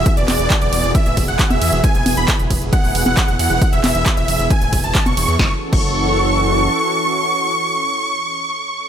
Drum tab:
CC |----------------|----------------|----------------|---x------------|
RD |x-x-x-x-x-x-x-x-|x-x-x-x-x-x-x-x-|x-x-x-x-x-x-x-x-|----------------|
HH |xxoxxxoxxxoxxxox|xxoxxxoxxooxxxox|xxoxxxoxxxoxxxox|----------------|
CP |--x-x-------x---|----x-------x---|--x-x-------x---|----------------|
SD |----------------|----------------|----------------|o---------------|
CG |--o----------o--|--o--------o----|--o----------o--|----------------|
BD |o---o---o-o-o---|o---o-o-o---o---|o---o---o-o-o---|o--o------------|

CC |----------------|
RD |----------------|
HH |----------------|
CP |----------------|
SD |----------------|
CG |----------------|
BD |----------------|